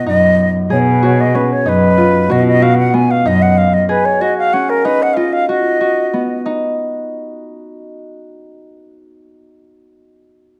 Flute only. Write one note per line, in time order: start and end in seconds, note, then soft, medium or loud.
0.08 0.52 D#5 medium
0.72 0.78 C#5 medium
0.88 1.06 B4 medium
1.05 1.22 C#5 medium
1.21 1.37 D#5 medium
1.36 1.54 B4 medium
1.52 1.70 C#5 medium
1.69 2.33 B4 medium
2.32 2.47 D#5 medium
2.48 2.64 D#5 medium
2.63 2.78 F5 medium
2.79 2.96 F#5 medium
2.95 3.12 G#5 medium
3.11 3.29 F5 medium
3.28 3.44 D#5 medium
3.42 3.59 F#5 medium
3.58 3.75 F5 medium
3.74 3.89 D#5 medium
3.89 4.07 B4 medium
4.05 4.23 C#5 medium
4.21 4.37 D#5 medium
4.38 4.55 F5 medium
4.53 4.71 F#5 medium
4.70 4.87 A#4 medium
4.85 5.04 B4 medium
5.03 5.15 F#5 medium
5.14 5.34 D#5 medium
5.14 5.19 F5 medium
5.33 5.49 F5 medium
5.50 6.41 D#5 medium